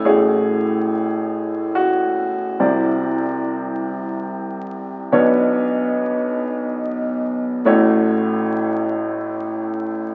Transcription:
<<
  \new Staff \with { instrumentName = "Upright piano" } { \time 6/8 \key a \major \tempo 4. = 47 gis'2 fis'4~ | fis'2~ fis'8 r8 | r2. | r2. | }
  \new Staff \with { instrumentName = "Upright piano" } { \time 6/8 \key a \major <a,, a, a fis' cis''>2. | <c, c c' e' d''>2. | <b,, b, b d' cis''>2. | <a,, a, a fis' cis''>2. | }
>>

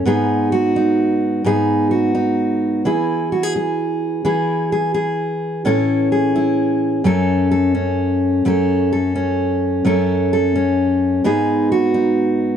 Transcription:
\new Staff \with { instrumentName = "Steel-string acoustic guitar" } { \time 3/4 \key fis \dorian \tempo 4 = 129 << { <b dis' gis'>4 fis'8 dis'4. | <b dis' gis'>4 fis'8 dis'4. | <e' gis'>4 fis'16 gis'16 gis'4. | <e' gis'>4 gis'8 gis'4. |
<cis' e' a'>4 gis'8 e'4. | <a cis' a'>4 a'8 cis'4. | <a cis' a'>4 a'8 cis'4. | <a cis' a'>4 a'8 cis'4. |
<b dis' gis'>4 fis'8 dis'4. | } \\ { gis,2. | gis,2. | e2. | e2. |
a,2. | fis,2. | fis,2. | fis,2. |
gis,2. | } >> }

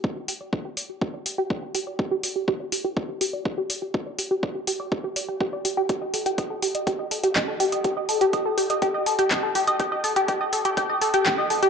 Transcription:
<<
  \new Staff \with { instrumentName = "Synth arpeggio sound" } { \time 4/4 \key ees \lydian \tempo 4 = 123 d''16 g'16 g'16 d''16 g'16 g'16 d''16 g'16 g'16 d''16 g'16 g'16 d''16 g'16 g'16 d''16 | g'16 g'16 d''16 g'16 g'16 d''16 g'16 g'16 d''16 g'16 g'16 d''16 g'16 g'16 d''16 g'16 | g'16 d''16 g'16 g'16 d''16 g'16 g'16 d''16 g'16 g'16 d''16 g'16 g'16 d''16 g'16 g'16 | g'16 ees''16 a'16 g'16 ees''16 a'16 g'16 ees''16 g'16 ees''16 a'16 g'16 ees''16 a'16 g'16 ees''16 |
g'16 ees''16 a'16 g'16 ees''16 a'16 g'16 ees''16 g'16 ees''16 a'16 g'16 ees''16 a'16 g'16 ees''16 | g'16 ees''16 a'16 g'16 g'16 ees''16 a'16 g'16 g'16 ees''16 a'16 g'16 g'16 ees''16 a'16 g'16 | }
  \new DrumStaff \with { instrumentName = "Drums" } \drummode { \time 4/4 bd8 hho8 bd8 hho8 bd8 hho8 bd8 hho8 | bd8 hho8 bd8 hho8 bd8 hho8 bd8 hho8 | bd8 hho8 bd8 hho8 bd8 hho8 bd8 hho8 | <hh bd>8 hho16 hh16 <hh bd>8 hho16 hh16 <hh bd>8 hho16 hh16 <hc hh bd>8 hho16 hh16 |
<hh bd>8 hho16 hh16 <hh bd>8 hho16 hh16 <hh bd>8 hho16 hh16 <hc hh bd>8 hho16 hh16 | <hh bd>8 hho16 hh16 <hh bd>8 hho16 hh16 <hh bd>8 hho16 hh16 <hc hh bd>8 hho16 hh16 | }
>>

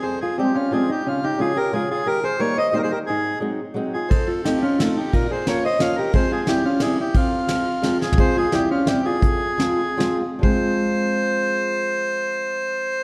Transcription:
<<
  \new Staff \with { instrumentName = "Accordion" } { \time 3/4 \key f \minor \tempo 4 = 175 c''8 aes'8 g'8 f'8 aes'8 g'8 | f'8 g'8 aes'8 bes'8 aes'8 aes'8 | bes'8 c''8 des''8 ees''8 c''32 bes'32 c''16 bes'8 | aes'4 r4. aes'8 |
c''8 a'8 g'8 f'8 a'8 g'8 | bes'8 c''8 des''8 ees''8 f''8 bes'8 | c''8 aes'8 g'8 f'8 aes'8 g'8 | f'2~ f'8 aes'8 |
c''8 aes'8 g'8 f'8 g'8 aes'8~ | aes'2~ aes'8 r8 | c''2.~ | c''2. | }
  \new Staff \with { instrumentName = "Hollow-body jazz guitar" } { \time 3/4 \key f \minor aes'8 f'8 c'8 des'8 f'8 ees'8 | des'8 ees'8 f'8 g'8 f'8 f'8 | g'8 aes'8 bes'8 c''8 g'32 g'32 aes'16 g'8 | ees'4 r4. f'8 |
a'8 f'8 ees'8 des'8 f'8 ees'8 | f'8 aes'8 bes'8 c''8 des''8 g'8 | aes'8 f'8 e'8 des'8 e'8 e'8 | c'2~ c'8 f'8 |
aes'8 f'8 e'8 des'8 e'8 f'8~ | f'2~ f'8 r8 | aes2.~ | aes2. | }
  \new Staff \with { instrumentName = "Steel-string acoustic guitar" } { \clef bass \time 3/4 \key f \minor f,4 <f g aes c'>8 r8 <f g aes c'>8 r8 | des4 <des f aes des'>8 r8 <des f aes des'>8 r8 | ees4 <ees g bes ees'>8 r8 <ees g bes ees'>8 r8 | aes,4 <ges aes c' ees'>8 r8 <ges aes c' ees'>8 r8 |
f,4 <f a c' ees'>8 r8 <f a c' ees'>8 r8 | bes,4 <f bes des' f'>8 r8 <f bes des' f'>8 r8 | <f aes c' f'>4 <e g c' e'>8 r8 <e g c' e'>8 r8 | f,4 <f aes c' f'>8 r8 <f aes c' f'>8 r8 |
<f aes c' f'>4 <e g c' e'>8 r8 <e g c' e'>8 r8 | f,4 <f aes c' f'>8 r8 <f aes c' f'>8 r8 | <f aes c' f'>2.~ | <f aes c' f'>2. | }
  \new DrumStaff \with { instrumentName = "Drums" } \drummode { \time 3/4 r4 r4 r4 | r4 r4 r4 | r4 r4 r4 | r4 r4 r4 |
<bd cymr>4 <cymr sn>4 <cymr sn>4 | <bd cymr>4 <cymr sn>4 <cymr sn>4 | <bd cymr>4 <cymr sn>4 <cymr sn>4 | <bd cymr>4 <cymr sn>4 \tuplet 3/2 { <cymr sn>16 r16 r16 sn16 r16 tomfh16 } |
<hh bd>4 <hh sn>4 <hh sn>4 | <hh bd>4 <hh sn>4 <hh sn>4 | bd4 r4 r4 | r4 r4 r4 | }
>>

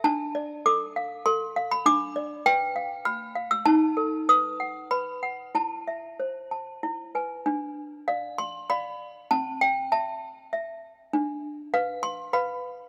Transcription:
\new Staff \with { instrumentName = "Toy piano" } { \time 3/4 \key d \dorian \tempo 4 = 98 << { a''4 d'''4 c'''8. b''16 | d'''4 g''4 f'''8. e'''16 | a''4 dis'''4 b''4 | a''2 r4 |
r4 f''8 c'''8 b''4 | a''8 g''8 a''2 | r4 f''8 c'''8 b''4 | } \\ { d'8 d''8 a'8 f''8 a'8 f''8 | d'8 d''8 b'8 f''8 b''8 f''8 | dis'8 a'8 b'8 fis''8 b'8 fis''8 | e'8 e''8 c''8 a''8 e'8 <b' gis''>8 |
d'4 d''4 <d'' f''>4 | c'4 e''4 e''4 | d'4 b'4 <b' f''>4 | } >> }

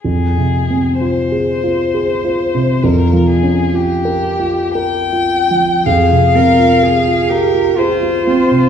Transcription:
<<
  \new Staff \with { instrumentName = "Violin" } { \time 3/4 \key f \minor \tempo 4 = 63 aes'4 c''2 | bes'8 aes'8 g'4 g''4 | f''4. bes'8 c''4 | }
  \new Staff \with { instrumentName = "Cello" } { \time 3/4 \key f \minor r2. | r2. | aes'8 bes'8 aes'8 g'8 f'8 f'8 | }
  \new Staff \with { instrumentName = "Grand piano" } { \time 3/4 \key f \minor \tuplet 3/2 { f,8 c8 c'8 f'8 aes'8 f'8 aes'8 f'8 c8 } | \tuplet 3/2 { f,8 f8 des'8 f'8 bes'8 f'8 bes'8 f'8 f8 } | f,16 c16 c'16 f'16 aes'16 f'16 aes'16 f'16 aes'16 f'16 c'16 c16 | }
>>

